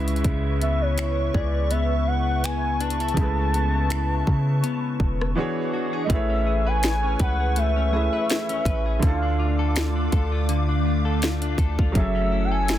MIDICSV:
0, 0, Header, 1, 7, 480
1, 0, Start_track
1, 0, Key_signature, 3, "major"
1, 0, Tempo, 731707
1, 162, Time_signature, 4, 2, 24, 8
1, 8386, End_track
2, 0, Start_track
2, 0, Title_t, "Analog synth pad"
2, 0, Program_c, 0, 89
2, 0, Note_on_c, 0, 71, 83
2, 0, Note_on_c, 0, 76, 76
2, 0, Note_on_c, 0, 85, 92
2, 2056, Note_off_c, 0, 76, 0
2, 2083, Note_on_c, 0, 81, 74
2, 3496, Note_off_c, 0, 71, 0
2, 3508, Note_off_c, 0, 81, 0
2, 3522, Note_on_c, 0, 62, 64
2, 3523, Note_on_c, 0, 68, 74
2, 3523, Note_on_c, 0, 78, 67
2, 3976, Note_off_c, 0, 85, 0
2, 3997, Note_off_c, 0, 62, 0
2, 3998, Note_off_c, 0, 68, 0
2, 3998, Note_off_c, 0, 78, 0
2, 4002, Note_on_c, 0, 71, 84
2, 4002, Note_on_c, 0, 80, 80
2, 4002, Note_on_c, 0, 85, 92
2, 5903, Note_off_c, 0, 71, 0
2, 5903, Note_off_c, 0, 80, 0
2, 5903, Note_off_c, 0, 85, 0
2, 5922, Note_on_c, 0, 57, 86
2, 5922, Note_on_c, 0, 77, 73
2, 5922, Note_on_c, 0, 86, 92
2, 7823, Note_off_c, 0, 77, 0
2, 7823, Note_off_c, 0, 86, 0
2, 7844, Note_on_c, 0, 78, 78
2, 7844, Note_on_c, 0, 88, 92
2, 8386, Note_off_c, 0, 57, 0
2, 8386, Note_off_c, 0, 78, 0
2, 8386, Note_off_c, 0, 88, 0
2, 8386, End_track
3, 0, Start_track
3, 0, Title_t, "Soft synth lead"
3, 0, Program_c, 1, 80
3, 405, Note_on_c, 1, 76, 95
3, 535, Note_on_c, 1, 73, 89
3, 544, Note_off_c, 1, 76, 0
3, 882, Note_on_c, 1, 74, 92
3, 892, Note_off_c, 1, 73, 0
3, 1121, Note_on_c, 1, 76, 96
3, 1131, Note_off_c, 1, 74, 0
3, 1359, Note_on_c, 1, 78, 96
3, 1369, Note_off_c, 1, 76, 0
3, 1599, Note_on_c, 1, 80, 107
3, 1609, Note_off_c, 1, 78, 0
3, 1840, Note_on_c, 1, 81, 127
3, 1850, Note_off_c, 1, 80, 0
3, 3521, Note_off_c, 1, 81, 0
3, 3963, Note_on_c, 1, 75, 69
3, 4011, Note_on_c, 1, 76, 101
3, 4021, Note_off_c, 1, 75, 0
3, 4378, Note_on_c, 1, 80, 115
3, 4388, Note_off_c, 1, 76, 0
3, 4725, Note_off_c, 1, 80, 0
3, 4729, Note_on_c, 1, 78, 104
3, 4971, Note_on_c, 1, 76, 112
3, 4981, Note_off_c, 1, 78, 0
3, 5930, Note_on_c, 1, 77, 89
3, 5940, Note_off_c, 1, 76, 0
3, 6406, Note_off_c, 1, 77, 0
3, 7846, Note_on_c, 1, 76, 100
3, 8165, Note_on_c, 1, 79, 83
3, 8174, Note_off_c, 1, 76, 0
3, 8210, Note_on_c, 1, 80, 117
3, 8220, Note_off_c, 1, 79, 0
3, 8386, Note_off_c, 1, 80, 0
3, 8386, End_track
4, 0, Start_track
4, 0, Title_t, "Clean electric guitar"
4, 0, Program_c, 2, 27
4, 0, Note_on_c, 2, 49, 79
4, 0, Note_on_c, 2, 61, 61
4, 0, Note_on_c, 2, 68, 65
4, 153, Note_off_c, 2, 49, 0
4, 161, Note_on_c, 2, 49, 87
4, 400, Note_off_c, 2, 61, 0
4, 402, Note_on_c, 2, 59, 63
4, 641, Note_on_c, 2, 64, 70
4, 878, Note_off_c, 2, 68, 0
4, 881, Note_on_c, 2, 68, 69
4, 1119, Note_off_c, 2, 59, 0
4, 1121, Note_on_c, 2, 59, 69
4, 1598, Note_off_c, 2, 59, 0
4, 1601, Note_on_c, 2, 59, 61
4, 1838, Note_off_c, 2, 64, 0
4, 1840, Note_on_c, 2, 62, 65
4, 1860, Note_off_c, 2, 68, 0
4, 1970, Note_off_c, 2, 62, 0
4, 1970, Note_on_c, 2, 64, 52
4, 2072, Note_off_c, 2, 49, 0
4, 2080, Note_on_c, 2, 49, 86
4, 2133, Note_off_c, 2, 64, 0
4, 2317, Note_off_c, 2, 59, 0
4, 2319, Note_on_c, 2, 59, 63
4, 2560, Note_on_c, 2, 64, 68
4, 3037, Note_off_c, 2, 59, 0
4, 3040, Note_on_c, 2, 59, 67
4, 3521, Note_on_c, 2, 52, 85
4, 3573, Note_off_c, 2, 49, 0
4, 3762, Note_on_c, 2, 66, 67
4, 3781, Note_off_c, 2, 64, 0
4, 3891, Note_off_c, 2, 66, 0
4, 3891, Note_on_c, 2, 68, 50
4, 3998, Note_off_c, 2, 59, 0
4, 4001, Note_on_c, 2, 57, 84
4, 4053, Note_off_c, 2, 68, 0
4, 4131, Note_on_c, 2, 61, 64
4, 4242, Note_on_c, 2, 68, 61
4, 4373, Note_on_c, 2, 71, 67
4, 4475, Note_off_c, 2, 68, 0
4, 4483, Note_on_c, 2, 68, 68
4, 4604, Note_off_c, 2, 61, 0
4, 4612, Note_on_c, 2, 61, 61
4, 4716, Note_off_c, 2, 71, 0
4, 4724, Note_on_c, 2, 71, 72
4, 4844, Note_off_c, 2, 68, 0
4, 4852, Note_on_c, 2, 68, 60
4, 4959, Note_off_c, 2, 57, 0
4, 4962, Note_on_c, 2, 57, 84
4, 5084, Note_off_c, 2, 61, 0
4, 5092, Note_on_c, 2, 61, 64
4, 5195, Note_off_c, 2, 68, 0
4, 5203, Note_on_c, 2, 68, 62
4, 5325, Note_off_c, 2, 71, 0
4, 5333, Note_on_c, 2, 71, 66
4, 5436, Note_off_c, 2, 68, 0
4, 5444, Note_on_c, 2, 68, 62
4, 5564, Note_off_c, 2, 61, 0
4, 5572, Note_on_c, 2, 61, 63
4, 5674, Note_off_c, 2, 71, 0
4, 5682, Note_on_c, 2, 71, 70
4, 5803, Note_off_c, 2, 68, 0
4, 5811, Note_on_c, 2, 68, 59
4, 5817, Note_off_c, 2, 52, 0
4, 5922, Note_on_c, 2, 50, 90
4, 5974, Note_off_c, 2, 61, 0
4, 5974, Note_off_c, 2, 68, 0
4, 5974, Note_off_c, 2, 71, 0
4, 6053, Note_on_c, 2, 62, 66
4, 6163, Note_on_c, 2, 65, 62
4, 6292, Note_on_c, 2, 69, 71
4, 6393, Note_off_c, 2, 65, 0
4, 6401, Note_on_c, 2, 65, 64
4, 6524, Note_off_c, 2, 62, 0
4, 6532, Note_on_c, 2, 62, 61
4, 6640, Note_off_c, 2, 69, 0
4, 6642, Note_on_c, 2, 69, 69
4, 6763, Note_off_c, 2, 65, 0
4, 6771, Note_on_c, 2, 65, 62
4, 6874, Note_off_c, 2, 50, 0
4, 6881, Note_on_c, 2, 50, 86
4, 7003, Note_off_c, 2, 62, 0
4, 7011, Note_on_c, 2, 62, 65
4, 7113, Note_off_c, 2, 65, 0
4, 7121, Note_on_c, 2, 65, 58
4, 7247, Note_off_c, 2, 69, 0
4, 7250, Note_on_c, 2, 69, 69
4, 7258, Note_off_c, 2, 57, 0
4, 7353, Note_off_c, 2, 65, 0
4, 7361, Note_on_c, 2, 65, 63
4, 7482, Note_off_c, 2, 62, 0
4, 7490, Note_on_c, 2, 62, 65
4, 7598, Note_off_c, 2, 69, 0
4, 7600, Note_on_c, 2, 69, 73
4, 7723, Note_off_c, 2, 65, 0
4, 7731, Note_on_c, 2, 65, 59
4, 7841, Note_on_c, 2, 54, 90
4, 7893, Note_off_c, 2, 50, 0
4, 7893, Note_off_c, 2, 62, 0
4, 7894, Note_off_c, 2, 65, 0
4, 7970, Note_on_c, 2, 61, 66
4, 8081, Note_on_c, 2, 64, 64
4, 8208, Note_off_c, 2, 69, 0
4, 8211, Note_on_c, 2, 69, 72
4, 8312, Note_off_c, 2, 64, 0
4, 8320, Note_on_c, 2, 64, 66
4, 8386, Note_off_c, 2, 54, 0
4, 8386, Note_off_c, 2, 61, 0
4, 8386, Note_off_c, 2, 64, 0
4, 8386, Note_off_c, 2, 69, 0
4, 8386, End_track
5, 0, Start_track
5, 0, Title_t, "Grand piano"
5, 0, Program_c, 3, 0
5, 0, Note_on_c, 3, 49, 79
5, 0, Note_on_c, 3, 56, 74
5, 0, Note_on_c, 3, 64, 73
5, 0, Note_on_c, 3, 71, 71
5, 0, Note_on_c, 3, 76, 87
5, 34, Control_c, 3, 64, 127
5, 1803, Note_off_c, 3, 49, 0
5, 1811, Note_off_c, 3, 56, 0
5, 1818, Note_off_c, 3, 64, 0
5, 1825, Note_off_c, 3, 71, 0
5, 1833, Note_off_c, 3, 76, 0
5, 2059, Note_on_c, 3, 49, 67
5, 2073, Note_on_c, 3, 57, 61
5, 2088, Note_on_c, 3, 64, 58
5, 2091, Control_c, 3, 64, 0
5, 2104, Note_on_c, 3, 56, 61
5, 2118, Note_on_c, 3, 71, 74
5, 2199, Control_c, 3, 64, 127
5, 3484, Note_off_c, 3, 49, 0
5, 3491, Note_off_c, 3, 57, 0
5, 3499, Note_off_c, 3, 64, 0
5, 3506, Note_off_c, 3, 56, 0
5, 3513, Note_off_c, 3, 71, 0
5, 3513, Note_on_c, 3, 52, 77
5, 3520, Note_on_c, 3, 59, 76
5, 3526, Note_on_c, 3, 62, 73
5, 3530, Control_c, 3, 64, 0
5, 3531, Note_on_c, 3, 66, 73
5, 3538, Note_on_c, 3, 68, 77
5, 3544, Note_on_c, 3, 73, 85
5, 3663, Control_c, 3, 64, 127
5, 3978, Note_on_c, 3, 57, 68
5, 3992, Note_on_c, 3, 64, 63
5, 3997, Note_off_c, 3, 52, 0
5, 3998, Note_off_c, 3, 68, 0
5, 4001, Note_off_c, 3, 59, 0
5, 4004, Note_off_c, 3, 62, 0
5, 4007, Note_off_c, 3, 66, 0
5, 4008, Note_on_c, 3, 68, 65
5, 4011, Control_c, 3, 64, 0
5, 4013, Note_off_c, 3, 73, 0
5, 4022, Note_on_c, 3, 71, 62
5, 4037, Note_on_c, 3, 73, 75
5, 4144, Control_c, 3, 64, 127
5, 5166, Note_off_c, 3, 57, 0
5, 5173, Note_off_c, 3, 64, 0
5, 5181, Note_off_c, 3, 68, 0
5, 5188, Note_off_c, 3, 71, 0
5, 5195, Note_on_c, 3, 57, 51
5, 5196, Note_off_c, 3, 73, 0
5, 5203, Note_on_c, 3, 64, 48
5, 5210, Note_on_c, 3, 68, 47
5, 5217, Note_on_c, 3, 71, 45
5, 5225, Note_on_c, 3, 76, 58
5, 5899, Note_on_c, 3, 50, 69
5, 5914, Note_on_c, 3, 62, 64
5, 5918, Note_off_c, 3, 57, 0
5, 5919, Note_off_c, 3, 64, 0
5, 5926, Note_off_c, 3, 68, 0
5, 5929, Note_on_c, 3, 64, 48
5, 5930, Note_off_c, 3, 71, 0
5, 5930, Control_c, 3, 64, 0
5, 5933, Note_off_c, 3, 76, 0
5, 5944, Note_on_c, 3, 69, 62
5, 5960, Note_on_c, 3, 81, 73
5, 5972, Note_off_c, 3, 64, 0
5, 5972, Note_on_c, 3, 65, 61
5, 6066, Control_c, 3, 64, 127
5, 7804, Note_off_c, 3, 50, 0
5, 7812, Note_off_c, 3, 62, 0
5, 7820, Note_on_c, 3, 54, 69
5, 7827, Note_off_c, 3, 69, 0
5, 7834, Note_off_c, 3, 81, 0
5, 7834, Note_on_c, 3, 61, 61
5, 7841, Note_off_c, 3, 65, 0
5, 7849, Note_on_c, 3, 68, 64
5, 7850, Control_c, 3, 64, 0
5, 7863, Note_on_c, 3, 69, 67
5, 7879, Note_on_c, 3, 76, 74
5, 7947, Control_c, 3, 64, 127
5, 8386, Note_off_c, 3, 54, 0
5, 8386, Note_off_c, 3, 61, 0
5, 8386, Note_off_c, 3, 68, 0
5, 8386, Note_off_c, 3, 69, 0
5, 8386, Note_off_c, 3, 76, 0
5, 8386, End_track
6, 0, Start_track
6, 0, Title_t, "808-style bass"
6, 0, Program_c, 4, 38
6, 0, Note_on_c, 4, 37, 100
6, 150, Note_off_c, 4, 37, 0
6, 162, Note_on_c, 4, 37, 108
6, 856, Note_off_c, 4, 37, 0
6, 883, Note_on_c, 4, 37, 101
6, 2056, Note_off_c, 4, 37, 0
6, 2080, Note_on_c, 4, 37, 109
6, 2775, Note_off_c, 4, 37, 0
6, 2802, Note_on_c, 4, 49, 101
6, 3033, Note_off_c, 4, 49, 0
6, 3280, Note_on_c, 4, 28, 106
6, 3511, Note_off_c, 4, 28, 0
6, 4001, Note_on_c, 4, 33, 113
6, 4695, Note_off_c, 4, 33, 0
6, 4723, Note_on_c, 4, 37, 105
6, 5308, Note_off_c, 4, 37, 0
6, 5678, Note_on_c, 4, 33, 109
6, 5910, Note_off_c, 4, 33, 0
6, 5922, Note_on_c, 4, 38, 115
6, 6616, Note_off_c, 4, 38, 0
6, 6643, Note_on_c, 4, 38, 103
6, 7576, Note_off_c, 4, 38, 0
6, 7597, Note_on_c, 4, 38, 102
6, 7723, Note_off_c, 4, 38, 0
6, 7733, Note_on_c, 4, 38, 101
6, 7837, Note_off_c, 4, 38, 0
6, 7841, Note_on_c, 4, 30, 117
6, 8386, Note_off_c, 4, 30, 0
6, 8386, End_track
7, 0, Start_track
7, 0, Title_t, "Drums"
7, 51, Note_on_c, 9, 42, 51
7, 106, Note_off_c, 9, 42, 0
7, 106, Note_on_c, 9, 42, 39
7, 160, Note_off_c, 9, 42, 0
7, 160, Note_on_c, 9, 42, 62
7, 161, Note_on_c, 9, 36, 114
7, 226, Note_off_c, 9, 42, 0
7, 227, Note_off_c, 9, 36, 0
7, 403, Note_on_c, 9, 42, 68
7, 469, Note_off_c, 9, 42, 0
7, 640, Note_on_c, 9, 42, 70
7, 649, Note_on_c, 9, 26, 95
7, 706, Note_off_c, 9, 42, 0
7, 715, Note_off_c, 9, 26, 0
7, 882, Note_on_c, 9, 36, 89
7, 948, Note_off_c, 9, 36, 0
7, 1119, Note_on_c, 9, 42, 65
7, 1185, Note_off_c, 9, 42, 0
7, 1600, Note_on_c, 9, 42, 73
7, 1610, Note_on_c, 9, 26, 113
7, 1666, Note_off_c, 9, 42, 0
7, 1676, Note_off_c, 9, 26, 0
7, 1840, Note_on_c, 9, 42, 70
7, 1905, Note_off_c, 9, 42, 0
7, 1905, Note_on_c, 9, 42, 59
7, 1969, Note_off_c, 9, 42, 0
7, 1969, Note_on_c, 9, 42, 49
7, 2024, Note_off_c, 9, 42, 0
7, 2024, Note_on_c, 9, 42, 39
7, 2080, Note_off_c, 9, 42, 0
7, 2080, Note_on_c, 9, 36, 111
7, 2080, Note_on_c, 9, 42, 66
7, 2145, Note_off_c, 9, 42, 0
7, 2146, Note_off_c, 9, 36, 0
7, 2323, Note_on_c, 9, 42, 67
7, 2389, Note_off_c, 9, 42, 0
7, 2561, Note_on_c, 9, 42, 74
7, 2570, Note_on_c, 9, 26, 98
7, 2626, Note_off_c, 9, 42, 0
7, 2635, Note_off_c, 9, 26, 0
7, 2802, Note_on_c, 9, 36, 90
7, 2868, Note_off_c, 9, 36, 0
7, 3042, Note_on_c, 9, 42, 67
7, 3107, Note_off_c, 9, 42, 0
7, 3279, Note_on_c, 9, 36, 84
7, 3345, Note_off_c, 9, 36, 0
7, 3421, Note_on_c, 9, 37, 100
7, 3487, Note_off_c, 9, 37, 0
7, 4000, Note_on_c, 9, 36, 115
7, 4001, Note_on_c, 9, 42, 66
7, 4066, Note_off_c, 9, 36, 0
7, 4066, Note_off_c, 9, 42, 0
7, 4480, Note_on_c, 9, 42, 76
7, 4489, Note_on_c, 9, 38, 96
7, 4545, Note_off_c, 9, 42, 0
7, 4554, Note_off_c, 9, 38, 0
7, 4720, Note_on_c, 9, 42, 61
7, 4722, Note_on_c, 9, 36, 88
7, 4785, Note_off_c, 9, 42, 0
7, 4788, Note_off_c, 9, 36, 0
7, 4960, Note_on_c, 9, 42, 69
7, 5026, Note_off_c, 9, 42, 0
7, 5442, Note_on_c, 9, 42, 74
7, 5452, Note_on_c, 9, 38, 117
7, 5508, Note_off_c, 9, 42, 0
7, 5518, Note_off_c, 9, 38, 0
7, 5572, Note_on_c, 9, 42, 47
7, 5637, Note_off_c, 9, 42, 0
7, 5677, Note_on_c, 9, 36, 97
7, 5682, Note_on_c, 9, 42, 75
7, 5743, Note_off_c, 9, 36, 0
7, 5748, Note_off_c, 9, 42, 0
7, 5921, Note_on_c, 9, 36, 120
7, 5921, Note_on_c, 9, 42, 68
7, 5986, Note_off_c, 9, 42, 0
7, 5987, Note_off_c, 9, 36, 0
7, 6401, Note_on_c, 9, 42, 69
7, 6410, Note_on_c, 9, 38, 107
7, 6466, Note_off_c, 9, 42, 0
7, 6476, Note_off_c, 9, 38, 0
7, 6641, Note_on_c, 9, 42, 61
7, 6643, Note_on_c, 9, 36, 92
7, 6707, Note_off_c, 9, 42, 0
7, 6708, Note_off_c, 9, 36, 0
7, 6881, Note_on_c, 9, 42, 66
7, 6946, Note_off_c, 9, 42, 0
7, 7361, Note_on_c, 9, 42, 74
7, 7370, Note_on_c, 9, 38, 118
7, 7426, Note_off_c, 9, 42, 0
7, 7436, Note_off_c, 9, 38, 0
7, 7490, Note_on_c, 9, 42, 44
7, 7556, Note_off_c, 9, 42, 0
7, 7597, Note_on_c, 9, 36, 99
7, 7601, Note_on_c, 9, 42, 76
7, 7662, Note_off_c, 9, 36, 0
7, 7667, Note_off_c, 9, 42, 0
7, 7733, Note_on_c, 9, 36, 103
7, 7798, Note_off_c, 9, 36, 0
7, 7840, Note_on_c, 9, 42, 66
7, 7841, Note_on_c, 9, 36, 120
7, 7906, Note_off_c, 9, 36, 0
7, 7906, Note_off_c, 9, 42, 0
7, 8320, Note_on_c, 9, 42, 75
7, 8329, Note_on_c, 9, 38, 98
7, 8386, Note_off_c, 9, 38, 0
7, 8386, Note_off_c, 9, 42, 0
7, 8386, End_track
0, 0, End_of_file